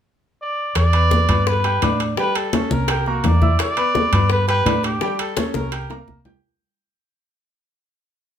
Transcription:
0.42 D5
0.75 E2 D5, high bongo, high conga, high timbale
0.93 B3 B4 B5, high conga, high timbale
1.11 high bongo, high conga
1.29 G2 B3 B4 B5, high conga, low conga, high timbale
1.47 B4, high bongo, high conga
1.64 G4 G5 G6, high bongo, high conga, high timbale
1.82 A2 D4 D5 D6, high bongo, low bongo, high conga, high timbale
2.00 high bongo, high timbale
2.17 G3 G4 B4 G5, high bongo, high conga
2.35 A4, high conga, high timbale
2.53 C#4 C#5 C#6, high bongo, high conga, high timbale
2.71 C2 A#4, high conga
2.88 G4 G5 G6, high bongo, high conga, high timbale
3.06 A#3 F#4 A#4 A#5, high bongo, high conga
3.24 E2 D5, high bongo, low bongo, high conga, high timbale
3.41 E4 E5 E6, high bongo, high conga
3.59 D5, high bongo, high conga, high timbale
3.77 B3 B4 B5, high conga, high timbale
3.95 high bongo, high conga
4.12 G2 B3 B4 B5, high conga, low conga, high timbale
4.30 B4, high bongo, high conga
4.48 G4 B4 G5 G6, high bongo, high conga, high timbale
4.66 A2 D4 D5 D6, high bongo, low bongo, high conga, high timbale
4.83 G4, high bongo, high timbale
5.01 G3 G4 G5, high bongo, high conga
5.19 A4, high conga, high timbale
5.37 C#4 C#5 C#6, high bongo, high conga, high timbale
5.54 C2 A#4, high bongo, high conga
5.72 G4 G5 G6, high conga, high timbale
5.90 A#3 A#4 A#5, low bongo, high conga, high timbale
6.07 C2, high conga
6.25 G4 G5 G6, low bongo, high conga, low timbale

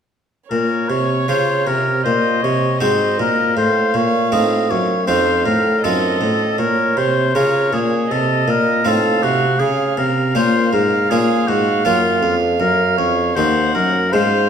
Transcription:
0.50 A#2 A#4 C#5
0.88 C3 C#5
1.28 C#3 C#4 F4 C5
1.67 C3 A#4
2.03 A#2 C5 D#5
2.42 C3 C#5
2.79 G#2 C4 D#4 F#4 C5 D#5
3.18 A#2 A#4
3.54 A2 C5 F5
3.94 A#2 C#5
4.32 A2 C4 D#4 F4 D#5
4.70 F#2 C#5
5.07 F2 C4 D#4 F4 C5 F5
5.45 A2 A#4
5.82 F#2 C4 D#4 F4 A4 D#5
6.21 A2
6.58 A#2 A#4 C#5
6.97 C3 C5
7.34 C#3 C#4 F4 A#4 C#5
7.72 A#2 G#4
8.09 C3 A4 D#5
8.47 A#2 A#4
8.85 A2 C4 D#4 F4 A4 F5
9.23 C3 F#4
9.59 C#3 G#4 F5
9.97 C3 A#4
10.35 A#2 A#3 C#4 F4 C5
10.72 G#2 A#4
11.10 A#2 A#3 C#4 F4 G#4
11.48 G#2 F#4
11.85 F#2 A#3 C#4 F4
12.22 F2
12.60 F#2 A#4
12.97 F2 C#5
13.35 D#2 A#3 D#4 C5 F#5
13.74 F#2 A#4
14.12 G#2 G#3 C5 F5

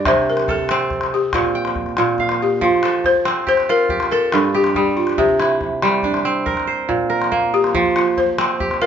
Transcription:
Already playing: G2 D5
0.05 C3 C5, calabash thump, calabash click
0.30 A#4
0.37 calabash click
0.48 A4, calabash thump
0.59 calabash click
0.69 C4, calabash click
0.80 calabash click
0.90 calabash thump, calabash click
1.01 calabash click
1.14 G4
1.33 A#2 F4, calabash thump, calabash click
1.43 calabash click
1.55 G5
1.65 calabash click
1.76 calabash thump
1.86 calabash click
1.97 A#2, calabash click
2.18 F5, calabash thump, calabash click
2.29 calabash click
2.42 G4
2.61 F3 F4, calabash thump
2.72 calabash click
2.83 A4, calabash click
3.04 C5, calabash thump, calabash click
3.25 C4, calabash click
3.47 G4 C5, calabash thump, calabash click
3.57 calabash click
3.69 F4 A#4
3.89 G4, calabash thump
4.00 calabash click
4.11 A4 A#4
4.32 G2 A4, calabash click
4.54 G4
4.64 calabash click
4.75 G3 G4, calabash thump
4.97 F4
5.07 calabash click
5.18 C3 G4, calabash thump
5.29 calabash click
5.40 E4, calabash click
5.61 calabash thump, calabash click
5.82 G3, calabash click
6.03 D4, calabash thump, calabash click
6.14 calabash click
6.25 C4
6.46 A#4, calabash thump
6.57 calabash click
6.67 C5
6.89 A#2, calabash thump
7.10 A#4
7.22 calabash click
7.32 A#3, calabash thump
7.54 G4
7.64 calabash click
7.74 F3 F4, calabash thump
7.86 calabash click
7.96 F4, calabash click
8.17 C5, calabash thump, calabash click
8.38 C4, calabash click
8.60 G4, calabash thump, calabash click
8.71 calabash click
8.81 F4 A#4

